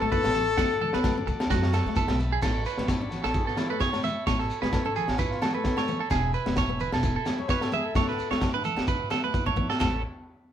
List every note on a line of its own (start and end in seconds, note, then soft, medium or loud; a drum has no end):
0.00 0.23 A1 medium
0.00 0.10 A3 medium
0.00 1.92 A4 loud
0.00 0.11 A4 medium
0.00 0.56 E5 medium
0.00 2.38 A5 medium
0.00 0.56 C#6 medium
0.00 high conga medium
0.12 0.30 B3 medium
0.12 0.34 B4 medium
0.12 kick loud
0.12 shekere medium
0.24 0.57 A1 medium
0.24 snare medium
0.24 high conga medium
0.24 low agogo medium
0.34 0.53 B3 medium
0.34 0.57 A4 medium
0.34 snare soft
0.34 low conga medium
0.34 shekere medium
0.57 0.91 D2 loud
0.57 0.76 A3 medium
0.57 0.80 F#5 medium
0.57 1.50 F#5 medium
0.57 1.51 D6 medium
0.57 kick loud
0.57 snare medium
0.57 low agogo medium
0.57 shekere medium
0.81 0.93 A4 medium
0.81 high conga medium
0.81 low conga medium
0.93 1.25 D2 medium
0.93 1.02 B3 medium
0.93 1.16 B4 medium
0.93 snare medium
1.04 1.14 A3 medium
1.04 kick loud
1.04 snare medium
1.04 high conga medium
1.04 low agogo medium
1.04 shekere medium
1.18 1.35 C#4 medium
1.27 1.49 D2 loud
1.27 muted clean electric guitar stroke medium
1.27 low conga medium
1.27 shekere medium
1.40 snare medium
1.40 low agogo medium
1.50 1.84 F#2 loud
1.50 1.68 C#4 medium
1.50 1.72 F#4 medium
1.50 1.96 F#5 medium
1.50 1.96 C#6 medium
1.50 kick loud
1.50 snare medium
1.50 high conga medium
1.50 shekere loud
1.63 snare medium
1.73 1.95 A4 medium
1.73 snare medium
1.73 low agogo medium
1.73 shekere medium
1.85 1.95 D#2 medium
1.85 1.94 A3 medium
1.85 snare soft
1.85 high conga medium
1.95 2.07 E2 loud
1.95 2.14 B3 medium
1.95 2.18 A4 medium
1.95 2.42 E5 medium
1.95 2.42 B5 medium
1.95 kick medium
1.95 shekere medium
2.08 2.40 B1 medium
2.08 snare medium
2.08 high conga medium
2.08 low agogo medium
2.19 2.37 B3 medium
2.19 snare soft
2.19 shekere medium
2.32 2.42 G#4 medium
2.42 2.64 A1 medium
2.42 2.61 A3 medium
2.42 2.64 A4 medium
2.42 6.08 C#5 medium
2.42 4.25 A5 medium
2.42 7.92 B5 medium
2.42 kick medium
2.42 snare medium
2.42 crash medium
2.42 low agogo medium
2.42 shekere loud
2.65 2.88 B4 medium
2.65 shekere medium
2.78 3.21 A1 medium
2.78 2.87 B3 medium
2.78 snare medium
2.78 high conga medium
2.88 2.99 A3 medium
2.88 3.03 E4 medium
2.88 muted clean electric guitar stroke medium
2.88 kick medium
2.88 snare medium
2.88 low agogo medium
2.88 shekere medium
3.01 3.19 C#4 medium
3.01 3.12 D4 medium
3.10 3.24 F#4 medium
3.10 snare soft
3.10 low conga medium
3.10 shekere medium
3.23 3.46 A1 medium
3.23 3.35 A4 medium
3.23 3.46 A4 medium
3.23 snare medium
3.23 low agogo medium
3.34 3.52 C#4 medium
3.34 3.48 G#4 medium
3.34 kick medium
3.34 shekere medium
3.47 3.59 B3 medium
3.47 3.69 A4 medium
3.47 snare soft
3.57 3.71 E4 medium
3.57 snare medium
3.57 high conga medium
3.57 low conga medium
3.57 low agogo medium
3.57 shekere medium
3.69 3.78 A3 medium
3.69 3.81 A4 medium
3.69 3.80 B4 medium
3.79 3.98 B3 medium
3.79 3.91 G#4 medium
3.79 4.02 C#5 medium
3.79 kick medium
3.79 snare medium
3.79 shekere loud
3.92 3.98 C#5 medium
3.92 snare medium
3.92 high conga medium
3.92 low agogo medium
4.03 4.21 B3 medium
4.03 4.26 E5 medium
4.03 high conga medium
4.03 low conga medium
4.03 shekere medium
4.26 4.49 A1 medium
4.26 4.45 A3 medium
4.26 4.39 C#5 medium
4.26 6.08 G#5 medium
4.26 kick medium
4.26 snare medium
4.26 low agogo medium
4.26 shekere loud
4.39 4.61 A4 medium
4.39 snare soft
4.50 shekere medium
4.62 5.06 A1 medium
4.62 4.71 B3 medium
4.62 4.74 G#4 medium
4.62 4.84 B4 medium
4.62 snare medium
4.62 high conga medium
4.72 4.82 A3 medium
4.72 5.10 A4 medium
4.72 kick medium
4.72 snare medium
4.72 low agogo medium
4.72 shekere medium
4.85 5.03 C#4 medium
4.85 4.96 A4 medium
4.96 5.18 G#4 medium
4.96 low conga medium
4.96 shekere medium
5.08 5.30 A1 medium
5.08 5.20 F#4 medium
5.08 snare medium
5.08 low agogo medium
5.18 5.36 C#4 medium
5.18 5.32 E4 medium
5.18 5.41 B4 medium
5.18 kick loud
5.18 shekere medium
5.31 5.44 F4 medium
5.31 snare soft
5.42 5.56 F#4 medium
5.42 5.54 A4 medium
5.42 snare medium
5.42 high conga medium
5.42 low conga medium
5.42 low agogo medium
5.42 shekere medium
5.54 5.62 A3 medium
5.54 6.11 A4 medium
5.54 5.76 B4 medium
5.64 5.83 B3 medium
5.64 kick medium
5.64 snare medium
5.64 shekere medium
5.77 6.00 C#5 medium
5.77 snare medium
5.77 high conga medium
5.77 low agogo medium
5.87 6.06 B3 medium
5.87 high conga medium
5.87 low conga medium
5.87 shekere medium
6.00 6.10 A4 medium
6.10 6.33 E1 loud
6.10 6.29 G#3 medium
6.10 6.33 G#4 medium
6.10 9.76 E5 medium
6.10 7.93 G#5 medium
6.10 kick medium
6.10 snare medium
6.10 low agogo medium
6.10 shekere medium
6.34 6.56 B4 medium
6.34 shekere medium
6.46 6.90 E1 medium
6.46 6.55 A3 medium
6.46 snare medium
6.46 high conga medium
6.56 6.67 G#3 medium
6.56 6.80 C#5 medium
6.56 kick loud
6.56 snare medium
6.56 low agogo medium
6.56 shekere loud
6.69 6.87 B3 medium
6.80 6.92 B4 medium
6.80 low conga medium
6.80 shekere medium
6.92 7.14 E1 medium
6.92 7.15 A4 medium
6.92 snare medium
6.92 low agogo medium
7.03 7.21 B3 medium
7.03 kick medium
7.03 shekere loud
7.16 7.38 A4 medium
7.26 snare medium
7.26 high conga medium
7.26 low conga medium
7.26 low agogo medium
7.26 shekere medium
7.38 7.47 G#3 medium
7.38 7.50 C#5 medium
7.49 7.67 B3 medium
7.49 7.64 B4 medium
7.49 7.72 C#5 medium
7.49 kick medium
7.49 snare medium
7.49 shekere medium
7.61 7.75 A4 medium
7.61 snare medium
7.61 low agogo medium
7.72 7.90 B3 medium
7.72 7.87 G#4 medium
7.72 7.95 E5 medium
7.72 high conga medium
7.72 low conga medium
7.72 shekere medium
7.85 8.54 A4 medium
7.95 8.17 D2 loud
7.95 8.14 A3 medium
7.95 8.08 C#5 loud
7.95 9.78 F#5 medium
7.95 9.78 D6 medium
7.95 kick medium
7.95 snare medium
7.95 low agogo medium
7.95 shekere loud
8.08 8.30 B4 medium
8.08 snare soft
8.18 shekere medium
8.31 8.74 D2 medium
8.31 8.39 B3 medium
8.31 8.53 C#5 medium
8.31 snare medium
8.31 high conga medium
8.41 8.52 A3 medium
8.41 kick medium
8.41 snare medium
8.41 low agogo medium
8.41 shekere medium
8.54 8.73 D4 medium
8.54 8.64 B4 medium
8.64 8.87 A4 medium
8.64 high conga medium
8.64 low conga medium
8.64 shekere medium
8.77 8.99 D2 medium
8.77 snare medium
8.77 low agogo medium
8.87 9.06 D4 medium
8.87 9.10 B4 medium
8.87 kick medium
8.87 shekere loud
9.10 9.23 A4 medium
9.10 snare medium
9.10 high conga medium
9.10 low conga medium
9.10 low agogo medium
9.10 shekere medium
9.24 9.32 A3 medium
9.24 9.46 B4 medium
9.34 9.52 B3 medium
9.34 kick medium
9.34 shekere loud
9.46 9.68 C#5 medium
9.46 kick medium
9.46 high conga medium
9.46 low agogo medium
9.56 9.74 B3 medium
9.56 kick medium
9.56 high conga medium
9.56 low conga medium
9.70 9.79 A4 medium
9.70 snare medium
9.79 10.02 A1 medium
9.79 9.94 A3 medium
9.79 10.01 A4 medium
9.79 10.02 A4 medium
9.79 10.02 B4 medium
9.79 10.02 C#5 medium
9.79 snare medium
9.79 floor tom medium
9.79 ride bell medium
9.79 high conga medium
9.79 low agogo loud
9.79 shekere medium